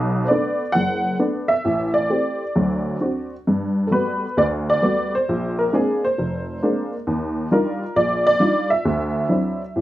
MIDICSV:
0, 0, Header, 1, 2, 480
1, 0, Start_track
1, 0, Key_signature, 1, "major"
1, 0, Tempo, 449775
1, 1754, Time_signature, 4, 2, 24, 8
1, 10471, End_track
2, 0, Start_track
2, 0, Title_t, "Honky-tonk piano"
2, 0, Program_c, 0, 3
2, 0, Note_on_c, 0, 35, 68
2, 0, Note_on_c, 0, 47, 69
2, 258, Note_off_c, 0, 35, 0
2, 258, Note_off_c, 0, 47, 0
2, 264, Note_on_c, 0, 72, 52
2, 300, Note_on_c, 0, 74, 75
2, 317, Note_off_c, 0, 72, 0
2, 323, Note_on_c, 0, 57, 55
2, 323, Note_on_c, 0, 59, 47
2, 329, Note_on_c, 0, 62, 56
2, 655, Note_off_c, 0, 57, 0
2, 655, Note_off_c, 0, 59, 0
2, 658, Note_off_c, 0, 62, 0
2, 773, Note_on_c, 0, 78, 102
2, 800, Note_on_c, 0, 30, 59
2, 801, Note_off_c, 0, 74, 0
2, 1215, Note_off_c, 0, 30, 0
2, 1229, Note_off_c, 0, 78, 0
2, 1271, Note_on_c, 0, 57, 47
2, 1275, Note_on_c, 0, 62, 57
2, 1276, Note_on_c, 0, 59, 44
2, 1583, Note_on_c, 0, 76, 96
2, 1609, Note_off_c, 0, 57, 0
2, 1611, Note_off_c, 0, 59, 0
2, 1611, Note_off_c, 0, 62, 0
2, 1760, Note_on_c, 0, 33, 64
2, 2035, Note_off_c, 0, 76, 0
2, 2069, Note_on_c, 0, 74, 84
2, 2174, Note_off_c, 0, 33, 0
2, 2235, Note_on_c, 0, 57, 47
2, 2241, Note_on_c, 0, 60, 47
2, 2243, Note_on_c, 0, 67, 52
2, 2572, Note_off_c, 0, 57, 0
2, 2575, Note_off_c, 0, 60, 0
2, 2576, Note_off_c, 0, 67, 0
2, 2726, Note_on_c, 0, 54, 58
2, 2728, Note_on_c, 0, 38, 52
2, 3146, Note_off_c, 0, 54, 0
2, 3147, Note_off_c, 0, 38, 0
2, 3209, Note_on_c, 0, 60, 45
2, 3209, Note_on_c, 0, 62, 41
2, 3215, Note_on_c, 0, 66, 49
2, 3488, Note_off_c, 0, 74, 0
2, 3552, Note_off_c, 0, 60, 0
2, 3552, Note_off_c, 0, 62, 0
2, 3555, Note_off_c, 0, 66, 0
2, 3707, Note_on_c, 0, 43, 64
2, 4123, Note_off_c, 0, 43, 0
2, 4129, Note_on_c, 0, 69, 57
2, 4173, Note_on_c, 0, 55, 48
2, 4180, Note_off_c, 0, 69, 0
2, 4180, Note_on_c, 0, 57, 48
2, 4181, Note_on_c, 0, 59, 46
2, 4181, Note_on_c, 0, 66, 52
2, 4186, Note_on_c, 0, 71, 78
2, 4517, Note_off_c, 0, 55, 0
2, 4520, Note_off_c, 0, 57, 0
2, 4521, Note_off_c, 0, 59, 0
2, 4521, Note_off_c, 0, 66, 0
2, 4665, Note_on_c, 0, 38, 60
2, 4675, Note_on_c, 0, 74, 93
2, 4682, Note_off_c, 0, 71, 0
2, 4746, Note_off_c, 0, 74, 0
2, 5012, Note_on_c, 0, 74, 94
2, 5082, Note_off_c, 0, 38, 0
2, 5146, Note_on_c, 0, 55, 49
2, 5150, Note_on_c, 0, 57, 44
2, 5152, Note_on_c, 0, 59, 42
2, 5156, Note_on_c, 0, 66, 56
2, 5482, Note_off_c, 0, 55, 0
2, 5484, Note_off_c, 0, 57, 0
2, 5485, Note_off_c, 0, 59, 0
2, 5487, Note_off_c, 0, 66, 0
2, 5493, Note_off_c, 0, 74, 0
2, 5496, Note_on_c, 0, 72, 90
2, 5643, Note_on_c, 0, 34, 68
2, 5961, Note_on_c, 0, 70, 75
2, 5978, Note_off_c, 0, 72, 0
2, 6054, Note_off_c, 0, 34, 0
2, 6104, Note_off_c, 0, 70, 0
2, 6108, Note_on_c, 0, 56, 50
2, 6115, Note_on_c, 0, 58, 46
2, 6116, Note_on_c, 0, 62, 56
2, 6118, Note_on_c, 0, 60, 47
2, 6131, Note_on_c, 0, 68, 79
2, 6419, Note_off_c, 0, 68, 0
2, 6445, Note_off_c, 0, 56, 0
2, 6448, Note_off_c, 0, 58, 0
2, 6448, Note_off_c, 0, 62, 0
2, 6450, Note_off_c, 0, 60, 0
2, 6451, Note_on_c, 0, 72, 87
2, 6599, Note_on_c, 0, 29, 59
2, 7009, Note_off_c, 0, 29, 0
2, 7071, Note_on_c, 0, 58, 47
2, 7072, Note_on_c, 0, 56, 48
2, 7074, Note_on_c, 0, 60, 44
2, 7077, Note_on_c, 0, 62, 59
2, 7353, Note_off_c, 0, 72, 0
2, 7403, Note_off_c, 0, 58, 0
2, 7404, Note_off_c, 0, 56, 0
2, 7405, Note_off_c, 0, 60, 0
2, 7406, Note_off_c, 0, 62, 0
2, 7546, Note_on_c, 0, 39, 66
2, 7960, Note_off_c, 0, 39, 0
2, 8016, Note_on_c, 0, 62, 51
2, 8017, Note_on_c, 0, 55, 53
2, 8022, Note_on_c, 0, 63, 47
2, 8025, Note_on_c, 0, 65, 57
2, 8032, Note_on_c, 0, 70, 76
2, 8353, Note_off_c, 0, 55, 0
2, 8353, Note_off_c, 0, 62, 0
2, 8356, Note_off_c, 0, 63, 0
2, 8357, Note_off_c, 0, 65, 0
2, 8470, Note_off_c, 0, 70, 0
2, 8496, Note_on_c, 0, 34, 58
2, 8499, Note_on_c, 0, 74, 92
2, 8793, Note_off_c, 0, 74, 0
2, 8822, Note_on_c, 0, 74, 110
2, 8910, Note_off_c, 0, 34, 0
2, 8963, Note_on_c, 0, 55, 50
2, 8964, Note_on_c, 0, 62, 46
2, 8969, Note_on_c, 0, 65, 52
2, 8970, Note_on_c, 0, 63, 45
2, 9262, Note_off_c, 0, 74, 0
2, 9288, Note_on_c, 0, 76, 89
2, 9302, Note_off_c, 0, 55, 0
2, 9303, Note_off_c, 0, 62, 0
2, 9306, Note_off_c, 0, 63, 0
2, 9306, Note_off_c, 0, 65, 0
2, 9444, Note_on_c, 0, 38, 66
2, 9859, Note_off_c, 0, 38, 0
2, 9915, Note_on_c, 0, 54, 51
2, 9915, Note_on_c, 0, 62, 47
2, 9917, Note_on_c, 0, 60, 42
2, 9925, Note_on_c, 0, 64, 55
2, 10256, Note_off_c, 0, 54, 0
2, 10256, Note_off_c, 0, 62, 0
2, 10257, Note_off_c, 0, 60, 0
2, 10261, Note_off_c, 0, 64, 0
2, 10416, Note_on_c, 0, 33, 57
2, 10471, Note_off_c, 0, 33, 0
2, 10471, Note_off_c, 0, 76, 0
2, 10471, End_track
0, 0, End_of_file